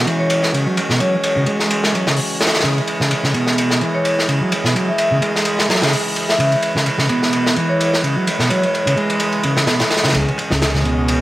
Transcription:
Already playing: tonewheel organ E3 G#3 C#4 F#4
0.06 distorted electric guitar E3, ride
0.19 vibraphone C#5
0.30 vibraphone C#5, ride
0.43 snare
0.53 distorted electric guitar C#3, ride
0.66 distorted electric guitar F#3
0.77 ride
0.90 distorted electric guitar B2, snare
1.00 distorted electric guitar F#3, vibraphone C#5, ride
1.24 ride
1.37 distorted electric guitar C#3
1.46 distorted electric guitar G#3, ride
1.60 snare
1.70 ride
1.84 snare
1.94 distorted electric guitar F#3, ride
2.07 distorted electric guitar C#3, snare
2.16 open hi-hat
2.40 snare, ride
2.47 snare, ride
2.54 snare, ride
2.59 snare, ride
2.63 distorted electric guitar C#3, tonewheel organ E4 G#4, ride
2.78 ride
2.87 ride
3.01 distorted electric guitar C#3, snare
3.11 ride
3.24 distorted electric guitar C#3, snare
3.34 distorted electric guitar B2, ride
3.47 snare
3.58 ride
3.71 snare
3.81 distorted electric guitar E3, ride
3.94 vibraphone C#5
4.05 vibraphone C#5, ride
4.19 snare
4.28 distorted electric guitar C#3, ride
4.41 distorted electric guitar F#3
4.52 ride
4.64 distorted electric guitar B2, snare
4.75 distorted electric guitar F#3, ride
4.88 vibraphone E5
4.98 vibraphone E5, ride
5.12 distorted electric guitar C#3
5.22 distorted electric guitar G#3, ride
5.36 snare
5.45 ride
5.59 snare
5.69 distorted electric guitar F#3, snare, ride
5.75 snare, ride
5.82 distorted electric guitar C#3, snare, ride
5.87 snare, ride
5.93 open hi-hat
6.16 ride
6.29 vibraphone E5, snare
6.39 distorted electric guitar C#3, tonewheel organ B4, ride
6.52 ride
6.62 ride
6.76 distorted electric guitar C#3, snare
6.86 ride
6.99 distorted electric guitar C#3, snare
7.09 distorted electric guitar B2, ride
7.22 snare
7.33 ride
7.46 snare
7.56 distorted electric guitar E3, ride
7.69 vibraphone C#5
7.80 vibraphone C#5, ride
7.94 snare
8.03 distorted electric guitar C#3, ride
8.16 distorted electric guitar F#3
8.27 ride
8.39 distorted electric guitar B2, snare
8.49 distorted electric guitar F#3, vibraphone C#5, ride
8.63 ride
8.75 ride
8.87 distorted electric guitar C#3, ride
8.97 distorted electric guitar G#3, ride
9.10 ride
9.20 ride
9.32 ride
9.43 distorted electric guitar C#3, ride
9.57 distorted electric guitar C#3, snare
9.67 distorted electric guitar B2, snare, ride
9.80 snare, ride
9.90 snare, ride
9.97 snare, ride
10.04 distorted electric guitar C#3, snare, ride
10.09 snare, ride
10.13 upright bass C#2, distorted electric guitar C#3, tonewheel organ E3 G#3 C#4 G#4, kick, ride
10.28 ride
10.38 kick, ride
10.51 upright bass C#2, distorted electric guitar C#3, snare
10.62 snare, ride
10.74 distorted electric guitar C#3, snare
10.85 distorted electric guitar B2, ride
11.08 ride

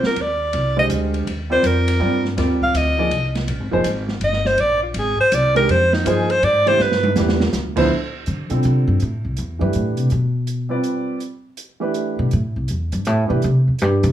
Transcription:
Already playing: grand piano G3 C4 F4 A#4 D5
0.03 alto saxophone A#4, muted upright bass stroke, snare
0.16 upright bass D#2, ride
0.21 alto saxophone D5
0.53 upright bass C2, ride
0.77 grand piano D3 G#3 G4 C5 D#5, alto saxophone D#5
0.90 upright bass D2, hi-hat pedal, ride
1.14 ride
1.27 upright bass D#2, ride
1.50 grand piano G3 C4 F4 A#4 D5, alto saxophone C5
1.63 upright bass F2, alto saxophone A#4, hi-hat pedal, ride
1.88 ride
2.00 upright bass G2, grand piano G3 C4 F4 A#4 D5
2.25 snare
2.36 upright bass D#2, grand piano G3 C4 F4 A#4 D5, snare, ride
2.62 alto saxophone F5, kick
2.74 upright bass D2, alto saxophone D#5, hi-hat pedal, ride
2.98 grand piano F3 A#3 D#4 G#4 D5
3.11 upright bass C2, ride
3.35 snare, ride
3.47 upright bass A#1, ride
3.59 upright bass G#1
3.71 upright bass F1, grand piano F3 A#3 D#4 G#4 C5
3.84 upright bass G#1, hi-hat pedal, ride
4.08 snare
4.21 upright bass G1, alto saxophone D#5, ride
4.33 snare
4.45 alto saxophone C5, snare
4.58 upright bass A#1, alto saxophone D5, ride
4.83 alto saxophone F4
4.94 upright bass G#1, ride
4.99 alto saxophone G#4
5.20 alto saxophone C5, muted upright bass stroke
5.32 upright bass C2, alto saxophone D5, hi-hat pedal, ride
5.55 grand piano D#3 G#3 D4 G4 A#4, alto saxophone A#4, ride
5.69 upright bass F2, alto saxophone C5, ride
5.93 alto saxophone D#4, snare
6.05 upright bass G2, grand piano F3 A#3 D#4 G#4 C5, alto saxophone G#4, hi-hat pedal, ride
6.30 alto saxophone C5, ride
6.43 upright bass G#2, alto saxophone D5, ride
6.66 grand piano E3 A3 D4 G4 D5, alto saxophone C5, ride
6.79 upright bass G2, alto saxophone B4, snare
6.92 snare
7.03 high tom
7.16 upright bass E2, grand piano E3 A3 D4 G4 B4, snare, hi-hat pedal
7.29 snare
7.40 snare
7.53 upright bass D2, snare, hi-hat pedal
7.76 grand piano D2 F3 B3 E4 A4 C5, kick, crash
8.26 upright bass D3, closed hi-hat
8.50 upright bass B2, grand piano D3 G3 C4 F4 A4, closed hi-hat
8.63 upright bass C3, closed hi-hat
8.87 upright bass G2
9.00 upright bass A2, closed hi-hat
9.25 upright bass C2
9.37 upright bass E2, closed hi-hat
9.59 upright bass G2, grand piano E3 A3 D4 G4 B4
9.73 upright bass A2, closed hi-hat
9.97 upright bass C3, closed hi-hat
10.10 upright bass B2, closed hi-hat
10.47 closed hi-hat
10.69 grand piano G3 C4 F4 B4 D5
10.84 closed hi-hat
11.20 closed hi-hat
11.57 closed hi-hat
11.80 grand piano E3 A3 D4 G4 B4
11.94 closed hi-hat
12.19 upright bass B2
12.31 upright bass A2, closed hi-hat
12.56 upright bass C2
12.68 upright bass E2, closed hi-hat
12.92 upright bass G2, closed hi-hat
13.05 upright bass A2, closed hi-hat
13.28 upright bass B2, grand piano E3 A3 D4 G4 B4
13.42 upright bass C3, closed hi-hat
13.68 upright bass E2
13.79 upright bass G2, closed hi-hat
14.03 upright bass C3, closed hi-hat

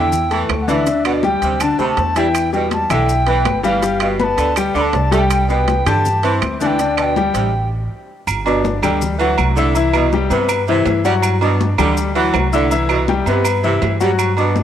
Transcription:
Already playing: upright bass E2, saxophone section D3, grand piano E4 E5 E6, bansuri G5
0.12 high conga, low conga, maracas
0.30 saxophone section E3, grand piano A3 A4 A5, high conga, high timbale, maracas
0.49 upright bass D2, high conga, high timbale, low timbale, claves, maracas
0.61 bansuri F#5
0.67 grand piano D3 D4 D5, saxophone section E3, bansuri F5, high conga, maracas
0.73 bansuri E5
0.86 grand piano D3 D4 D5, high timbale, maracas
1.05 saxophone section B2, bansuri F#5, high conga, high timbale, claves, maracas
1.23 grand piano G3 G4 G5, bansuri G5, high conga, maracas
1.42 upright bass D2, saxophone section C3, high conga, high timbale, maracas
1.60 grand piano D3 D4 D5, bansuri A5, high conga, high timbale, claves, maracas
1.79 upright bass D2, saxophone section C3, grand piano A3 A4 A5, bansuri B5, high conga, maracas
1.85 bansuri A5
1.97 upright bass E2, high conga, high timbale, low timbale, maracas
2.16 grand piano E3 E4 E5, saxophone section G3, bansuri G5, high timbale, maracas
2.34 high conga, high timbale, claves, maracas
2.53 saxophone section B2, grand piano G3 G4 G5, bansuri G5, high conga, maracas
2.71 bansuri A5, high conga, high timbale, maracas
2.90 upright bass B1, saxophone section D3, grand piano E4 E5 E6, bansuri G5, high conga, low conga, high timbale, claves, maracas
3.09 high conga, maracas
3.27 saxophone section E3, grand piano B3 B4 B5, high conga, high timbale, maracas
3.45 upright bass G1, high conga, high timbale, low timbale, claves, maracas
3.63 saxophone section E3, grand piano G3 G4 G5, bansuri F5, high conga, maracas
3.82 grand piano G3 G4 G5, high conga, high timbale, maracas
4.00 saxophone section B2, bansuri F5, high conga, high timbale, claves, maracas
4.19 grand piano B3 B4 B5, bansuri A5 B5, high conga, maracas
4.37 upright bass D2, saxophone section D3, high conga, high timbale, maracas
4.56 grand piano G3 G4 G5, bansuri G5, high conga, high timbale, claves, maracas
4.74 upright bass D2, saxophone section D3, grand piano D4 D5 D6, bansuri B5, high conga, maracas
4.82 bansuri A5
4.93 upright bass C2, high conga, high timbale, low timbale, maracas
5.11 grand piano G3 G4 G5, saxophone section A3, bansuri A5, high timbale, maracas
5.18 bansuri G5
5.30 high conga, high timbale, claves, maracas
5.49 saxophone section B2, grand piano B3 B4 B5, bansuri G5, high conga, maracas
5.68 high conga, high timbale, maracas
5.86 upright bass G2, saxophone section D3, grand piano G4 G5 G6, bansuri A5, high conga, low conga, high timbale, claves, maracas
6.05 high conga, low conga, maracas
6.23 saxophone section E3, grand piano C4 C5 C6, high conga, high timbale, maracas
6.42 upright bass D2, high conga, high timbale, claves, maracas
6.60 grand piano D3 D4 D5, saxophone section E3, bansuri A5, high conga, maracas
6.66 bansuri G5
6.79 grand piano D3 D4 D5, high conga, high timbale, maracas
6.97 saxophone section B2, bansuri A5, high conga, high timbale, claves, maracas
7.03 bansuri G5
7.16 grand piano G3 G4 G5, high conga, maracas
7.34 upright bass A1, saxophone section C3, high conga, high timbale, maracas
8.27 upright bass G1, high conga, low agogo, claves, maracas
8.45 saxophone section B2, grand piano D4 D5 D6, high conga, low agogo, maracas
8.65 high conga, maracas
8.82 upright bass D2, saxophone section D3, grand piano G3 G4 G5, high conga, low conga, low agogo, claves, maracas
9.02 high conga, low conga, maracas
9.19 saxophone section E3, grand piano F#3 F#4 F#5, high conga, low agogo, maracas
9.38 upright bass C2, high conga, low agogo, claves, maracas
9.56 saxophone section D3, grand piano E4 E5 E6, high conga, maracas
9.75 grand piano E3 E4 E5, high conga, low agogo, maracas
9.93 saxophone section B2, high conga, low agogo, claves, maracas
10.12 grand piano G3 G4 G5, high conga, maracas
10.30 upright bass G2, saxophone section C3, grand piano B3 B4 B5, high conga, low agogo, maracas
10.49 high conga, low agogo, claves, maracas
10.68 saxophone section C3, grand piano E3 E4 E5, high conga, maracas
10.85 upright bass G2, high conga, low timbale, low agogo, maracas
11.04 grand piano F#3 F#4 F#5, saxophone section G3, maracas
11.22 high conga, low agogo, claves, maracas
11.41 saxophone section B2, grand piano D4 D5 D6, high conga, low agogo, maracas
11.60 high conga, maracas
11.78 upright bass D2, saxophone section D3, grand piano G3 G4 G5, high conga, low conga, low agogo, claves, maracas
11.97 high conga, maracas
12.15 saxophone section E3, grand piano F#3 F#4 F#5, high conga, low agogo, maracas
12.33 upright bass C2, high conga, low timbale, low agogo, claves, maracas
12.53 saxophone section D3, grand piano E4 E5 E6, high conga, maracas
12.71 grand piano E3 E4 E5, high conga, low agogo, maracas
12.89 saxophone section B2, low agogo, claves, maracas
13.08 grand piano G3 G4 G5, high conga, maracas
13.26 upright bass G2, saxophone section C3, grand piano B3 B4 B5, low agogo, maracas
13.45 high conga, low agogo, claves, maracas
13.63 saxophone section C3, grand piano E3 E4 E5, high conga, maracas
13.82 upright bass G2, high conga, low timbale, low agogo, maracas
14.00 grand piano F#3 F#4 F#5, saxophone section G3, high conga, maracas
14.19 high conga, low agogo, claves, maracas
14.37 saxophone section B2, grand piano D4 D5 D6, high conga, low agogo, maracas
14.56 high conga, maracas

